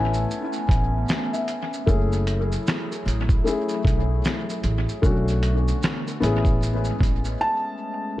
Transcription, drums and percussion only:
0.14 shaker soft
0.31 shaker medium
0.53 shaker soft
0.69 kick medium
0.69 closed hi-hat medium
0.69 shaker soft
1.09 finger snap medium
1.09 snare loud
1.09 shaker medium
1.34 shaker soft
1.48 closed hi-hat medium
1.48 shaker soft
1.73 shaker soft
1.87 kick loud
1.87 shaker medium
2.12 shaker soft
2.27 closed hi-hat medium
2.27 shaker soft
2.52 shaker soft
2.67 finger snap medium
2.67 snare loud
2.67 shaker medium
2.92 shaker soft
3.08 closed hi-hat medium
3.08 shaker medium
3.29 kick loud
3.29 shaker soft
3.47 shaker medium
3.69 shaker soft
3.85 kick medium
3.85 closed hi-hat medium
3.85 shaker soft
4.24 finger snap medium
4.24 snare loud
4.24 shaker medium
4.49 shaker soft
4.64 closed hi-hat medium
4.64 shaker soft
4.89 shaker soft
5.03 kick loud
5.03 shaker medium
5.28 shaker soft
5.43 closed hi-hat medium
5.43 shaker soft
5.68 shaker soft
5.83 finger snap medium
5.83 snare loud
5.83 shaker medium
6.07 shaker soft
6.23 closed hi-hat medium
6.23 shaker medium
6.45 kick medium
6.45 shaker soft
6.63 shaker medium
6.84 shaker soft
7.00 kick medium
7.00 closed hi-hat medium
7.00 shaker soft
7.25 shaker medium

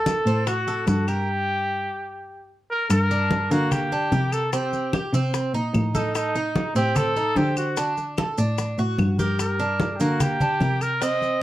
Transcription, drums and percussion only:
0.06 high bongo medium
0.06 high conga medium
0.06 maracas medium
0.27 high conga soft
0.27 maracas soft
0.47 high bongo medium
0.47 high conga soft
0.47 claves medium
0.47 maracas medium
0.67 high conga soft
0.67 maracas soft
0.87 high bongo medium
0.87 low bongo medium
0.87 high conga medium
0.87 maracas medium
1.08 high conga soft
1.08 claves medium
1.08 maracas soft
2.90 high bongo medium
2.90 high conga soft
2.90 claves medium
2.90 maracas medium
3.10 high bongo soft
3.10 high conga soft
3.10 maracas soft
3.31 high bongo medium
3.31 high conga medium
3.31 maracas soft
3.51 high bongo soft
3.51 high conga soft
3.51 maracas medium
3.72 high bongo medium
3.72 high conga soft
3.72 low conga medium
3.72 claves medium
3.72 maracas medium
3.92 high bongo soft
3.92 high conga soft
3.92 maracas soft
4.12 high bongo soft
4.12 low bongo medium
4.12 high conga medium
4.12 maracas soft
4.32 high conga soft
4.32 claves medium
4.32 maracas medium
4.53 high bongo medium
4.53 high conga soft
4.53 maracas medium
4.73 high bongo soft
4.73 high conga soft
4.73 maracas soft
4.93 high bongo medium
4.93 high conga medium
4.93 claves medium
4.93 maracas soft
5.14 high bongo soft
5.14 high conga soft
5.14 maracas medium
5.34 high bongo medium
5.34 high conga soft
5.34 maracas medium
5.54 high bongo soft
5.54 high conga soft
5.54 maracas soft
5.74 high bongo soft
5.74 low bongo medium
5.74 high conga medium
5.74 claves medium
5.74 maracas soft
5.95 high conga medium
5.95 maracas medium
6.15 high bongo medium
6.15 high conga soft
6.15 claves medium
6.15 maracas medium
6.35 high bongo soft
6.35 high conga soft
6.35 maracas soft
6.55 high bongo medium
6.55 high conga medium
6.55 maracas soft
6.76 high bongo soft
6.76 high conga soft
6.76 maracas medium
6.96 high bongo medium
6.96 high conga soft
6.96 low conga medium
6.96 claves medium
6.96 maracas medium
7.16 high bongo soft
7.16 high conga soft
7.16 maracas soft
7.36 high bongo soft
7.36 low bongo medium
7.36 high conga medium
7.36 maracas soft
7.57 high conga soft
7.57 claves medium
7.57 maracas medium
7.77 high bongo medium
7.77 high conga soft
7.77 maracas medium
7.97 high bongo soft
7.97 high conga soft
7.97 maracas soft
8.17 high bongo medium
8.17 high conga medium
8.17 claves medium
8.17 maracas soft
8.38 high bongo soft
8.38 high conga soft
8.38 maracas medium
8.58 high bongo medium
8.58 high conga soft
8.58 maracas medium
8.78 high bongo soft
8.78 high conga soft
8.78 maracas soft
8.99 high bongo soft
8.99 low bongo medium
8.99 high conga medium
8.99 claves medium
8.99 maracas soft
9.19 high conga medium
9.19 maracas medium
9.39 high bongo medium
9.39 high conga soft
9.39 claves medium
9.39 maracas medium
9.59 high bongo soft
9.59 high conga soft
9.59 maracas soft
9.80 high bongo medium
9.80 high conga loud
9.80 maracas soft
10.00 high bongo soft
10.00 high conga soft
10.00 maracas medium
10.20 high bongo medium
10.20 high conga soft
10.20 low conga medium
10.20 claves medium
10.20 maracas medium
10.40 high bongo soft
10.40 high conga soft
10.40 low conga medium
10.40 maracas soft
10.60 high bongo soft
10.60 low bongo medium
10.60 high conga medium
10.60 maracas soft
10.81 high conga soft
10.81 claves medium
10.81 maracas medium
11.01 high bongo medium
11.01 high conga soft
11.01 maracas medium
11.22 high bongo soft
11.22 high conga soft
11.22 maracas soft

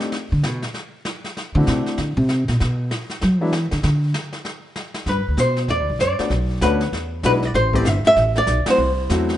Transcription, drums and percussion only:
0.00 snare soft
0.12 brush sweep soft
0.12 snare soft
0.43 snare medium
0.62 snare soft
0.74 brush sweep soft
0.74 snare soft
1.05 snare medium
1.24 snare soft
1.37 brush sweep medium
1.37 snare medium
1.67 snare medium
1.86 snare soft
1.98 brush sweep soft
1.98 snare medium
2.29 snare medium
2.48 snare medium
2.60 brush sweep medium
2.60 snare soft
2.91 snare medium
3.10 snare soft
3.21 brush sweep soft
3.21 snare soft
3.52 snare medium
3.71 snare soft
3.83 brush sweep medium
3.83 snare medium
4.14 snare medium
4.33 snare soft
4.45 brush sweep soft
4.45 snare soft
4.76 snare medium
4.94 snare medium
5.06 brush sweep medium
5.06 kick soft
5.06 snare soft
5.37 kick soft
5.37 snare medium
5.37 hi-hat pedal medium
5.57 snare soft
5.68 brush sweep soft
5.68 kick soft
5.68 snare soft
6.00 kick soft
6.00 snare medium
6.00 hi-hat pedal soft
6.19 snare soft
6.30 brush sweep medium
6.30 kick soft
6.30 snare soft
6.61 kick soft
6.61 snare medium
6.61 hi-hat pedal medium
6.81 snare soft
6.92 brush sweep soft
6.92 kick soft
6.92 snare soft
7.23 kick soft
7.23 snare medium
7.23 hi-hat pedal soft
7.42 snare soft
7.54 brush sweep medium
7.54 kick soft
7.54 snare soft
7.73 kick soft
7.85 kick soft
7.85 snare medium
7.85 hi-hat pedal medium
8.05 snare soft
8.16 brush sweep soft
8.16 kick soft
8.16 snare soft
8.35 snare soft
8.47 kick soft
8.47 snare medium
8.47 hi-hat pedal medium
8.66 snare medium
8.66 ride medium
8.78 brush sweep medium
9.09 kick soft
9.09 snare medium
9.09 hi-hat pedal medium
9.29 snare soft

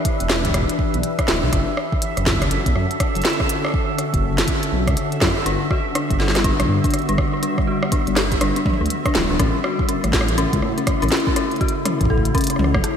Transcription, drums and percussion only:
0.05 kick loud
0.05 closed hi-hat medium
0.20 closed hi-hat soft
0.30 cross-stick medium
0.30 snare loud
0.45 kick loud
0.45 closed hi-hat medium
0.50 kick medium
0.54 kick medium
0.54 cross-stick medium
0.54 closed hi-hat medium
0.62 kick medium
0.69 closed hi-hat medium
0.79 kick loud
0.94 closed hi-hat soft
1.03 closed hi-hat medium
1.19 kick loud
1.19 cross-stick medium
1.19 closed hi-hat soft
1.28 snare loud
1.53 kick loud
1.53 cross-stick medium
1.53 closed hi-hat medium
1.77 cross-stick medium
1.92 kick loud
2.02 closed hi-hat medium
2.17 cross-stick medium
2.17 closed hi-hat soft
2.26 kick loud
2.26 snare loud
2.31 kick medium
2.35 kick medium
2.42 kick medium
2.42 cross-stick medium
2.42 closed hi-hat medium
2.48 kick soft
2.48 closed hi-hat medium
2.66 kick loud
2.66 closed hi-hat medium
2.76 cross-stick medium
2.91 closed hi-hat soft
3.00 kick loud
3.00 cross-stick medium
3.00 closed hi-hat medium
3.15 closed hi-hat soft
3.22 snare loud
3.22 closed hi-hat soft
3.25 closed hi-hat soft
3.30 closed hi-hat soft
3.33 closed hi-hat soft
3.40 kick loud
3.40 cross-stick soft
3.49 closed hi-hat medium
3.65 cross-stick medium
3.66 cross-stick medium
3.68 cross-stick soft
3.70 cross-stick soft
3.72 kick loud
3.72 cross-stick soft
3.99 cross-stick soft
3.99 closed hi-hat medium
4.14 kick loud
4.14 closed hi-hat soft
4.38 snare loud
4.38 closed hi-hat medium
4.48 kick loud
4.48 closed hi-hat medium
4.63 closed hi-hat medium
4.87 kick loud
4.87 cross-stick medium
4.87 closed hi-hat soft
4.97 closed hi-hat medium
5.12 closed hi-hat soft
5.21 kick loud
5.21 cross-stick soft
5.21 snare loud
5.27 cross-stick soft
5.30 cross-stick soft
5.37 cross-stick soft
5.43 cross-stick soft
5.43 closed hi-hat medium
5.71 kick loud
5.71 cross-stick soft
5.95 cross-stick medium
5.95 closed hi-hat medium
6.10 kick loud
6.10 closed hi-hat soft
6.20 snare medium
6.28 snare medium
6.35 cross-stick soft
6.35 snare medium
6.35 closed hi-hat soft
6.44 kick loud
6.44 closed hi-hat medium
6.60 cross-stick medium
6.60 closed hi-hat medium
6.84 kick loud
6.84 closed hi-hat soft
6.91 cross-stick soft
6.91 closed hi-hat soft
6.94 closed hi-hat medium
6.99 closed hi-hat soft
7.02 closed hi-hat soft
7.09 closed hi-hat soft
7.18 kick loud
7.18 cross-stick medium
7.43 closed hi-hat medium
7.58 kick loud
7.58 cross-stick medium
7.83 cross-stick medium
7.92 kick loud
7.92 closed hi-hat medium
8.07 closed hi-hat soft
8.16 cross-stick medium
8.16 snare loud
8.32 kick loud
8.32 closed hi-hat soft
8.41 cross-stick medium
8.41 closed hi-hat medium
8.56 closed hi-hat medium
8.66 kick loud
8.66 mid tom medium
8.70 mid tom medium
8.73 mid tom medium
8.77 mid tom soft
8.86 closed hi-hat soft
8.90 closed hi-hat medium
9.05 kick loud
9.05 cross-stick medium
9.05 closed hi-hat soft
9.15 snare loud
9.15 mid tom medium
9.39 kick loud
9.39 cross-stick medium
9.39 closed hi-hat medium
9.64 cross-stick medium
9.79 kick loud
9.89 closed hi-hat medium
10.04 cross-stick medium
10.04 closed hi-hat soft
10.13 kick loud
10.13 snare loud
10.21 cross-stick medium
10.29 closed hi-hat soft
10.38 closed hi-hat medium
10.53 kick loud
10.53 closed hi-hat medium
10.62 cross-stick medium
10.78 closed hi-hat soft
10.87 kick loud
10.87 cross-stick medium
10.87 closed hi-hat medium
11.02 closed hi-hat soft
11.09 snare loud
11.09 closed hi-hat soft
11.12 closed hi-hat soft
11.17 closed hi-hat soft
11.20 closed hi-hat soft
11.27 kick loud
11.36 cross-stick medium
11.36 closed hi-hat medium
11.51 closed hi-hat soft
11.56 closed hi-hat soft
11.61 kick loud
11.61 closed hi-hat soft
11.68 closed hi-hat soft
11.85 cross-stick medium
11.85 closed hi-hat medium
11.85 mid tom medium
12.01 kick medium
12.01 closed hi-hat soft
12.05 kick medium
12.10 kick medium
12.18 kick medium
12.25 closed hi-hat medium
12.35 kick loud
12.35 closed hi-hat soft
12.38 closed hi-hat soft
12.41 closed hi-hat medium
12.44 closed hi-hat medium
12.47 cross-stick soft
12.47 closed hi-hat medium
12.50 closed hi-hat medium
12.56 cross-stick soft
12.56 mid tom medium
12.64 cross-stick soft
12.74 kick loud
12.74 cross-stick medium
12.84 cross-stick medium
12.84 closed hi-hat medium

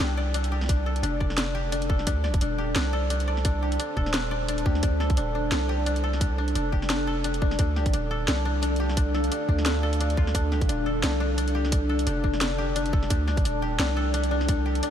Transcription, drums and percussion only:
0.34 closed hi-hat medium
0.44 closed hi-hat soft
0.61 snare soft
0.64 snare soft
0.66 kick loud
0.66 snare soft
0.66 closed hi-hat medium
0.71 snare soft
0.73 snare soft
0.76 snare soft
0.96 closed hi-hat soft
1.03 closed hi-hat medium
1.21 kick medium
1.30 snare soft
1.38 snare loud
1.38 closed hi-hat medium
1.72 closed hi-hat medium
1.82 closed hi-hat soft
1.90 kick loud
1.99 snare soft
2.07 kick loud
2.07 closed hi-hat medium
2.24 snare soft
2.34 kick loud
2.34 closed hi-hat soft
2.41 closed hi-hat medium
2.76 snare loud
2.76 closed hi-hat medium
3.10 closed hi-hat medium
3.20 closed hi-hat soft
3.37 snare soft
3.45 kick loud
3.45 closed hi-hat medium
3.72 closed hi-hat soft
3.80 closed hi-hat medium
3.97 kick medium
4.06 snare soft
4.14 snare loud
4.14 closed hi-hat medium
4.48 closed hi-hat medium
4.58 closed hi-hat soft
4.66 kick loud
4.75 snare soft
4.83 kick loud
4.83 closed hi-hat medium
5.00 snare soft
5.10 kick loud
5.10 closed hi-hat soft
5.17 closed hi-hat medium
5.52 snare loud
5.52 closed hi-hat medium
5.86 closed hi-hat medium
5.96 closed hi-hat soft
6.13 snare soft
6.21 kick loud
6.21 closed hi-hat medium
6.48 closed hi-hat soft
6.55 closed hi-hat medium
6.73 kick medium
6.82 snare soft
6.90 snare loud
6.90 closed hi-hat medium
7.24 closed hi-hat medium
7.34 closed hi-hat soft
7.42 kick loud
7.51 snare soft
7.59 kick loud
7.59 closed hi-hat medium
7.76 snare soft
7.86 kick loud
7.86 closed hi-hat soft
7.93 closed hi-hat medium
8.28 snare loud
8.28 closed hi-hat medium
8.63 closed hi-hat medium
8.76 closed hi-hat soft
8.89 snare soft
8.97 kick loud
8.97 closed hi-hat medium
9.14 snare soft
9.24 closed hi-hat soft
9.32 closed hi-hat medium
9.49 kick medium
9.58 snare soft
9.66 snare loud
9.66 closed hi-hat medium
9.93 closed hi-hat soft
10.01 closed hi-hat medium
10.10 closed hi-hat soft
10.17 kick loud
10.27 snare soft
10.35 kick loud
10.35 closed hi-hat medium
10.52 snare soft
10.61 kick loud
10.61 closed hi-hat soft
10.69 closed hi-hat medium
11.04 snare loud
11.04 closed hi-hat medium
11.38 closed hi-hat medium
11.48 closed hi-hat soft
11.65 snare soft
11.72 kick loud
11.72 closed hi-hat medium
11.99 closed hi-hat soft
12.07 closed hi-hat medium
12.24 kick medium
12.34 snare soft
12.41 snare loud
12.41 closed hi-hat medium
12.76 closed hi-hat medium
12.86 closed hi-hat soft
12.93 kick loud
13.03 snare soft
13.10 kick loud
13.10 closed hi-hat medium
13.28 snare soft
13.37 kick loud
13.37 closed hi-hat soft
13.45 closed hi-hat medium
13.80 snare loud
13.80 closed hi-hat medium
14.14 closed hi-hat medium
14.24 closed hi-hat soft
14.41 snare soft
14.49 kick loud
14.49 closed hi-hat medium
14.75 closed hi-hat soft
14.83 closed hi-hat medium

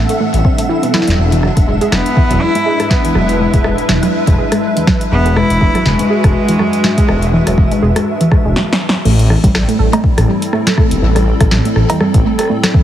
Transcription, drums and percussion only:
0.09 closed hi-hat medium
0.34 closed hi-hat medium
0.45 kick loud
0.58 closed hi-hat medium
0.83 closed hi-hat soft
0.94 snare loud
1.02 snare medium
1.08 snare medium
1.08 closed hi-hat medium
1.32 closed hi-hat soft
1.43 cross-stick soft
1.57 kick loud
1.57 closed hi-hat medium
1.81 closed hi-hat soft
1.92 cross-stick medium
1.92 snare loud
2.06 closed hi-hat medium
2.17 kick loud
2.31 closed hi-hat soft
2.55 closed hi-hat medium
2.80 cross-stick medium
2.80 closed hi-hat soft
2.91 kick loud
2.91 snare loud
3.05 closed hi-hat medium
3.15 cross-stick soft
3.29 closed hi-hat soft
3.54 kick loud
3.54 closed hi-hat medium
3.64 cross-stick medium
3.78 closed hi-hat soft
3.89 snare loud
4.03 cross-stick medium
4.03 closed hi-hat medium
4.27 kick loud
4.27 closed hi-hat soft
4.52 cross-stick medium
4.52 closed hi-hat medium
4.77 closed hi-hat soft
4.87 kick loud
4.87 cross-stick medium
4.87 snare loud
5.01 closed hi-hat medium
5.26 closed hi-hat soft
5.37 cross-stick medium
5.50 closed hi-hat medium
5.61 kick loud
5.75 cross-stick medium
5.75 closed hi-hat soft
5.86 snare loud
5.99 closed hi-hat medium
6.24 kick loud
6.24 cross-stick medium
6.24 closed hi-hat medium
6.49 closed hi-hat medium
6.59 cross-stick medium
6.73 closed hi-hat soft
6.84 snare loud
6.98 kick loud
6.98 closed hi-hat medium
7.09 cross-stick medium
7.22 closed hi-hat soft
7.47 cross-stick medium
7.47 closed hi-hat medium
7.58 kick loud
7.71 closed hi-hat soft
7.96 cross-stick medium
7.96 closed hi-hat medium
8.21 closed hi-hat medium
8.31 kick loud
8.31 cross-stick medium
8.56 snare medium
8.73 snare medium
8.89 snare medium
9.05 crash loud
9.19 closed hi-hat soft
9.30 cross-stick medium
9.44 kick loud
9.44 closed hi-hat medium
9.55 cross-stick medium
9.55 snare loud
9.69 closed hi-hat soft
9.93 cross-stick medium
9.93 closed hi-hat medium
9.93 cowbell medium
10.04 kick loud
10.18 cross-stick medium
10.18 closed hi-hat medium
10.42 closed hi-hat medium
10.53 cross-stick medium
10.67 snare loud
10.67 closed hi-hat medium
10.78 kick loud
10.78 cross-stick medium
10.91 closed hi-hat medium
11.16 cross-stick medium
11.16 closed hi-hat soft
11.41 kick loud
11.41 cross-stick medium
11.41 closed hi-hat medium
11.51 snare loud
11.65 closed hi-hat soft
11.76 cross-stick medium
11.90 closed hi-hat medium
11.90 cowbell medium
12.01 cross-stick medium
12.14 kick loud
12.14 closed hi-hat medium
12.39 cross-stick medium
12.39 closed hi-hat medium
12.41 cross-stick soft
12.43 cross-stick soft
12.45 cross-stick soft
12.48 cross-stick soft
12.63 cross-stick medium
12.63 snare loud
12.63 closed hi-hat medium
12.74 kick loud

